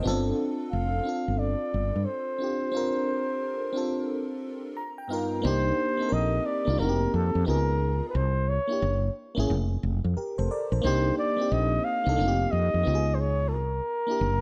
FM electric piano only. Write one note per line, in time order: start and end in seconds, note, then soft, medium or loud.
0.00 0.12 B3 medium
0.00 0.95 D4 medium
0.00 0.25 C5 soft
0.00 0.24 D#5 medium
0.05 0.97 C4 loud
0.05 0.96 F4 medium
0.05 0.97 A4 loud
1.04 2.25 C4 medium
1.04 2.25 D4 medium
1.04 2.26 F4 medium
1.09 2.27 A4 medium
2.38 2.69 C4 medium
2.38 2.70 D4 medium
2.38 2.71 F4 medium
2.43 2.72 G4 medium
2.72 3.64 C4 medium
2.72 3.64 D4 medium
2.72 3.65 F4 medium
2.77 3.66 A#4 medium
3.73 4.75 C4 medium
3.73 4.76 D4 medium
3.73 4.77 F4 medium
3.77 4.77 A4 medium
4.77 4.96 A#5 medium
4.98 5.09 G5 medium
5.08 5.39 G2 medium
5.08 5.40 B3 medium
5.08 5.40 D#4 medium
5.08 5.41 F4 medium
5.08 5.41 F5 medium
5.13 5.42 A#4 medium
5.42 5.89 A#3 medium
5.42 5.90 D4 medium
5.42 5.90 D#4 medium
5.47 5.91 G4 loud
5.97 6.53 A#3 medium
5.97 6.54 C4 medium
5.97 6.55 D#4 medium
6.02 6.05 A4 medium
6.09 6.59 A#4 medium
6.65 6.76 A#3 medium
6.65 6.79 D4 medium
6.65 6.79 D#4 medium
6.70 6.80 F4 medium
6.78 7.38 A#3 medium
6.78 7.39 C4 medium
6.78 7.40 D#4 medium
6.82 6.88 F#4 medium
6.89 7.44 G4 medium
7.45 8.06 B3 medium
7.45 8.06 D#4 medium
7.45 8.07 F4 medium
7.50 8.08 G#4 medium
8.68 8.80 A#3 medium
8.68 8.81 D4 medium
8.68 8.82 E4 medium
8.72 8.82 G4 medium
9.35 9.47 A#3 medium
9.35 9.48 C#4 medium
9.35 9.49 E4 medium
9.40 9.50 G#4 loud
10.17 10.37 G4 medium
10.17 10.36 A#4 medium
10.38 10.49 A4 medium
10.38 10.49 C5 medium
10.51 10.71 A#4 medium
10.51 10.70 D5 medium
10.72 11.04 A4 medium
10.72 11.03 C5 medium
10.82 11.28 A#3 loud
10.82 11.29 D4 medium
10.82 11.30 D#4 medium
10.87 11.31 G4 loud
11.37 11.93 A#3 medium
11.37 11.93 C4 medium
11.37 11.94 D#4 medium
11.42 11.95 G4 medium
12.04 12.15 A#3 medium
12.04 12.18 D4 medium
12.04 12.18 D#4 medium
12.09 12.19 A4 medium
12.16 12.77 A#3 medium
12.16 12.78 C4 medium
12.16 12.79 D#4 medium
12.21 12.28 F4 medium
12.28 12.83 G4 medium
12.83 13.45 B3 medium
12.83 13.45 D#4 medium
12.83 13.46 F4 medium
12.88 12.95 G4 medium
12.95 13.51 G#4 medium
14.07 14.19 A#3 medium
14.07 14.20 D4 medium
14.07 14.21 E4 medium
14.11 14.21 G4 medium